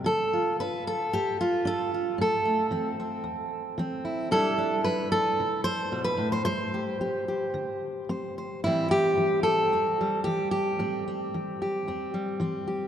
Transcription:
steel-string acoustic guitar
0.04 D3 A4
0.33 F4
0.60 D4 B4
0.87 A4
1.13 A2 G4
1.41 F4
1.65 D4 A4
1.94 F4
2.18 A2 A4
2.45 A3
2.71 E3 C4
3.00 C4
3.24 E2
3.78 E3 C4
4.05 E4
4.31 C3 G3 D4 E4 A4
4.58 D4
4.84 G3 B4
5.12 A4
5.40 C3
5.64 C5
5.92 B2
6.04 B4
6.17 A2
6.32 C5
6.45 G3 C5
6.74 G4
7.01 C4 G4
7.28 G4
7.54 D3
8.09 C4 C5
8.38 C5
8.64 A2 E3 G3 C4 E4
8.91 G4
9.17 E3
9.43 A4
9.72 E2 C4
10.01 G3
10.24 E3 G4
10.51 G4
10.79 A2 C4
11.08 C4
11.34 E3
11.62 G4
11.88 E2 C4
12.14 G3
12.40 E3 C4
12.67 G4

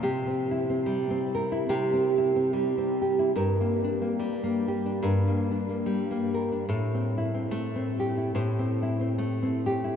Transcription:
nylon-string guitar
0.03 C3 G4
0.27 C4
0.51 E4
0.70 C4
0.86 G3
1.10 C4
1.35 A#4
1.52 E4
1.69 C3 G4
1.93 C4
2.18 E4
2.36 C4
2.53 G3
2.78 C4
3.02 G4
3.19 E4
3.36 G2 A#4
3.60 A#3
3.84 D4
4.02 A#3
4.19 G3
4.44 A#3
4.68 G4
4.86 D4
5.02 G2 A#4
5.27 A#3
5.51 D4
5.69 A#3
5.86 G3
6.11 A#3
6.34 A#4
6.52 D4
6.69 A2 A4
6.94 C4
7.18 E4
7.34 C4
7.51 A3
7.76 C4
8.00 G4
8.17 E4
8.35 A2 C5
8.59 C4
8.83 E4
9.01 C4
9.18 A3
9.43 C4
9.66 G4
9.84 E4

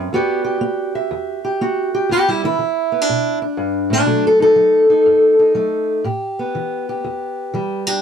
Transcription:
steel-string acoustic guitar
Already playing: F#2
0.13 E2 B3 F#4 G4 D5
0.45 G4
0.61 B3
0.95 E5
1.11 E2
1.45 G4
1.61 B3 F#4
1.95 G4
2.09 E2 B3 G4
2.28 G3 E4
2.44 E3 E4
2.59 E3
2.92 B3
3.01 D4
3.09 B2
3.42 D4
3.57 G2
3.90 A2 D4
4.06 B2 F#3 A3
4.27 A4
4.40 D#4 A4
4.56 F#3
4.90 D#4
5.06 F#2
5.39 D#4
5.55 F#3 A3
6.04 A2 G4
6.39 B3
6.55 E3
6.89 G4
7.04 E2
7.54 E3 G3
7.87 D4 G4

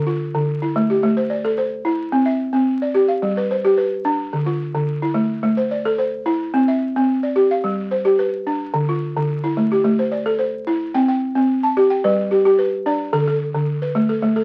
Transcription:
balafon
Already playing: D3
0.07 F4
0.35 D3
0.62 E4
0.76 A3
0.90 G4
1.03 A3
1.17 C5
1.30 D5
1.45 A4
1.58 C5
1.85 E4
2.12 C4
2.26 E5
2.53 C4
2.82 D5
2.94 G4
3.08 F5
3.22 G3
3.37 B4
3.51 C5
3.65 G4
3.78 B4
4.05 D4
4.33 D3
4.46 F4
4.75 D3
5.02 E4
5.14 A3
5.43 A3
5.57 C5
5.71 D5
5.85 A4
5.98 C5
6.26 E4
6.54 C4
6.68 E5
6.96 C4
7.23 D5
7.36 G4
7.51 F5
7.64 G3
7.91 C5
8.05 G4
8.19 B4
8.47 D4
8.74 D3
8.89 F4
9.16 D3
9.44 E4
9.57 A3
9.72 G4
9.84 A3
9.99 C5
10.12 D5
10.26 A4
10.39 C5
10.67 E4
10.94 C4 G5
11.08 G5
11.35 C4
11.63 A5
11.77 G4
11.90 G5
12.04 G3 B4
12.31 G4
12.45 G4
12.59 B4
12.86 D4 D5
13.13 D3 A4
13.27 A4
13.55 D3
13.82 B4
13.95 A3
14.09 A4
14.22 A3
14.36 A4

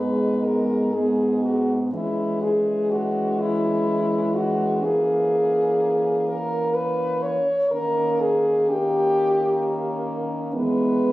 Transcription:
french horn
Already playing: G#2 G#3 B3 B4
0.44 A#4
0.94 G#3 B3 G#4
1.43 F#4
1.92 E3 G#3 C#4 E4
2.42 G#4
2.91 F#4
3.40 E4
4.36 F#4
4.82 A#3 C#4 G#4
6.28 A#4
6.74 B4
7.23 C#5
7.71 D#3 A#3 C#4 A#4
8.21 G#4
8.69 A#3 C#4 G4
10.53 E3 G#3 B3 B4

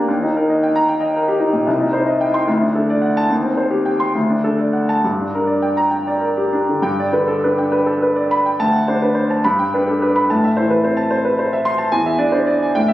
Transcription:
grand piano
Already playing: A#2 A#3 D4 G4 A#4 D5 G5 A#5
0.08 D#2
0.23 D#4
0.37 A#4
0.50 D#5
0.63 G5
0.76 A#5
0.88 G5
1.00 D#5
1.16 A#4
1.28 G4
1.40 D#4
1.53 A#2
1.67 C2
1.81 D#4
1.93 C5
2.07 D#5
2.21 G5
2.34 C6
2.47 D2
2.61 D4
2.75 A4
2.90 D5
3.02 F#5
3.17 A5
3.30 D#2
3.43 C4
3.57 C5
3.70 G4
3.86 G5
4.00 C6
4.15 D2
4.30 D4
4.44 A4
4.58 D5
4.73 F#5
4.89 A5
5.04 G2
5.20 D4
5.35 A#4
5.47 D5
5.62 G5
5.77 A#5
5.91 G5
6.07 D5
6.21 A#4
6.37 G4
6.53 D4
6.69 D3
6.82 G2 G5
7.00 D5
7.13 D3 B4
7.28 A4
7.44 D4 B4
7.58 G5
7.72 B4
7.86 A4
8.02 B4
8.16 D5
8.31 B5
8.46 G5
8.60 D2 A5
8.73 F#5
8.88 D4 C5
9.02 B4
9.15 C5
9.30 A5
9.44 G2 B5
9.59 G5
9.74 D4 B4
9.88 A4
10.02 B4
10.16 B5
10.30 A2 A5
10.44 E5
10.57 E3 C5
10.70 B4
10.84 C4 C5
10.97 A5
11.11 C5
11.25 B4
11.39 C5
11.53 E5
11.65 C6
11.78 A5
11.92 E2 G#5
12.06 E5
12.18 D4 D5
12.32 C5
12.47 D5
12.62 G#5
12.75 A2 G5
12.88 E5

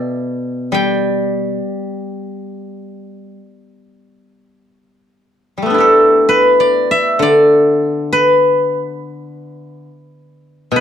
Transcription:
guzheng
Already playing: B2 A4 B4 D5 E5 G5 A5 B5
0.72 G3 G5
2.97 F#5
3.36 F5
3.74 E5
5.58 G3
5.62 A3 B3
5.70 D4
5.74 E4 G4
5.80 A4
6.29 B4
6.60 D5
6.91 E5
7.19 D3 D5
8.13 B4
10.72 B2
10.76 B4

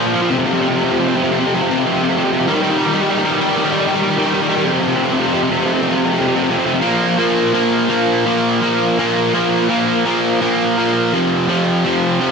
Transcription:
overdriven electric guitar
0.07 A#2 F3
0.13 A#2 F3
0.21 A#2 F3
0.30 F2 C3
0.37 F2 C3
0.45 F2 C3
0.53 F2 C3
0.61 F2 C3
0.69 F2 C3
0.76 F2 C3
0.84 F2 C3
0.92 F2 C3
1.00 F2 C3
1.07 F2 C3
1.15 F2 C3
1.22 F2 C3
1.31 F2 C3
1.39 F2 C3
1.46 F2 C3
1.54 F2 C3
1.62 F2 C3
1.70 F2 C3
1.77 F2 C3
1.85 F2 C3
1.93 F2 C3
2.00 F2 C3
2.09 F2 C3
2.17 F2 C3
2.24 F2 C3
2.32 F2 C3
2.39 F2 C3
2.47 D#3 G3
2.55 D#3 G3
2.63 D#3 G3
2.71 D#3 G3
2.78 D#3 G3
2.86 D#3 G3
2.94 D#3 G3
3.01 D#3 G3
3.10 D#3 G3
3.18 D#3 G3
3.24 D#3 G3
3.33 D#3 G3
3.40 D#3 G3
3.49 D#3 G3
3.56 D#3 G3
3.64 D#3 G3
3.72 D#3 G3
3.79 D#3 G3
3.87 D#3 G3
3.94 D#3 G3
4.03 D#3 G3
4.10 D#3 G3
4.18 D#3 G3
4.26 D#3 G3
4.34 D#3 G3
4.42 D#3 G3
4.49 D#3 G3
4.57 D#3 G3
4.65 F2 C3
4.73 F2 C3
4.80 F2 C3
4.88 F2 C3
4.96 F2 C3
5.03 F2 C3
5.11 F2 C3
5.18 F2 C3
5.27 F2 C3
5.34 F2 C3
5.42 F2 C3
5.50 F2 C3
5.58 F2 C3
5.65 F2 C3
5.73 F2 C3
5.81 F2 C3
5.88 F2 C3
5.96 F2 C3
6.04 F2 C3
6.12 F2 C3
6.19 F2 C3
6.27 F2 C3
6.35 F2 C3
6.43 F2 C3
6.50 F2 C3
6.58 F2 C3
6.66 F2 C3
6.74 F2 C3
6.81 A#2 F3 A#3
7.18 A#2 F3 A#3
7.53 A#2 F3 A#3
7.89 A#2 F3 A#3
8.25 A#2 F3 A#3
8.61 A#2 F3 A#3
8.99 A#2 F3 A#3
9.34 A#2 F3 A#3
9.70 A#2 F3 A#3
10.05 A#2 F3 A#3
10.41 A#2 F3 A#3
10.77 A#2 F3 A#3
11.13 F2 C3 F3
11.48 F2 C3 F3
11.85 F2 C3 F3
12.20 F2 C3 F3

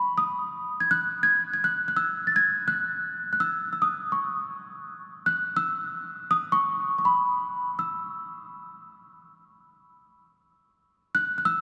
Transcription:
celesta
Already playing: B5
0.18 D#6
0.80 G#6
0.91 F#6
1.23 G#6
1.54 G#6
1.64 F#6
1.88 F#6
1.97 E6
2.27 A6
2.36 G#6
2.68 F#6
3.33 F#6
3.40 E6
3.73 E6
3.82 D#6
4.12 C#6
5.26 F#6
5.57 E6
6.31 D#6
6.52 C#6
6.98 C#6
7.05 B5
7.79 E6
11.15 F#6
11.38 F#6
11.45 E6

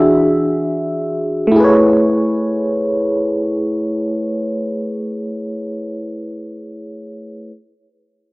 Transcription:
fm electric piano
Already playing: E3 D4 F#4 G#4 E5
1.47 A3
1.52 E4
1.56 G#4
1.60 B4
1.64 C#5

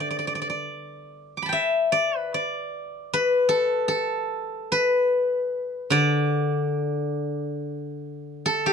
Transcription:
guzheng
Already playing: D3 E5 G5
0.00 D5
0.10 D5
0.19 D5
0.27 D5
0.35 D5
0.42 D5
0.50 D5
1.37 D6
1.42 A5 B5
1.49 E5 G5
1.92 D5
2.18 B4
2.34 D5
3.13 B4
3.49 A4
3.88 A4
4.72 B4
5.90 D3 D5
8.46 A4
8.66 G4

